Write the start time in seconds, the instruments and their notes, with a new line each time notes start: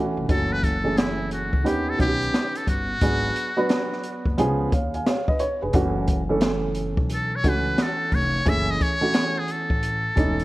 Already playing: upright piano E3 A3 C#4 F#4
0.17 upright bass F1
0.28 upright bass F#1, upright piano E3 A3 C#4 F#4, muted trumpet A4, kick, closed hi-hat
0.53 muted trumpet B4
0.64 muted trumpet A4, kick, closed hi-hat
0.84 upright piano E3 A3 C#4 G#4
0.98 muted trumpet E4, snare, closed hi-hat
1.31 muted trumpet F#4, closed hi-hat
1.53 upright bass C#2, kick
1.64 upright bass D#2, upright piano D#3 B3 C#4 G4, muted trumpet G4, closed hi-hat
1.90 muted trumpet A4
1.98 upright bass B1, upright piano D#3 B3 C#4 F#4, muted trumpet G4, kick, closed hi-hat
2.07 upright piano G4
2.23 closed hi-hat
2.34 snare, closed hi-hat
2.56 muted trumpet A4, closed hi-hat
2.68 upright bass G1, muted trumpet F#4, kick, closed hi-hat
3.01 upright bass G#1, upright piano F#3 B3 D4 G#4, kick, closed hi-hat
3.36 closed hi-hat
3.57 upright piano F#3 B3 D4 B4
3.69 snare, closed hi-hat
3.93 snare
4.03 closed hi-hat
4.25 upright bass F#1, kick
4.37 upright bass C#2, upright piano F3 B3 C#4 G#4, closed hi-hat
4.72 upright bass D#2, upright piano C#5 F5, kick, closed hi-hat
4.94 upright piano F5 G#5, closed hi-hat
5.06 upright piano C#5 F5, snare, closed hi-hat
5.28 upright piano B4 D#5, kick
5.39 upright piano C#5, closed hi-hat
5.62 upright bass F1, upright piano G#4 B4
5.73 upright bass F#1, upright piano E3 A3 C#4 F#4, kick, closed hi-hat
6.08 kick, closed hi-hat
6.29 upright piano E3 A3 C#4 A4
6.41 snare, closed hi-hat
6.75 closed hi-hat
6.97 upright bass B1, kick
7.09 closed hi-hat
7.14 muted trumpet A4
7.36 muted trumpet C#5
7.43 upright bass C#2, upright piano E3 A3 C#4 F#4, kick, closed hi-hat
7.49 muted trumpet B4
7.78 snare, closed hi-hat
7.82 muted trumpet A4
8.12 upright bass F1, muted trumpet C#5, kick, open hi-hat
8.45 upright bass F#1, upright piano E3 A3 C#4 G#4, muted trumpet E5, kick, closed hi-hat
8.71 muted trumpet D#5
8.81 muted trumpet C#5, kick, closed hi-hat
9.01 upright piano E3 A3 C#4 F#4
9.14 snare, closed hi-hat
9.39 muted trumpet G#4
9.48 muted trumpet A4, closed hi-hat
9.70 upright bass A1, kick
9.83 closed hi-hat
10.16 upright bass E1, upright piano E3 A3 C#4 D#4, kick, closed hi-hat
10.39 closed hi-hat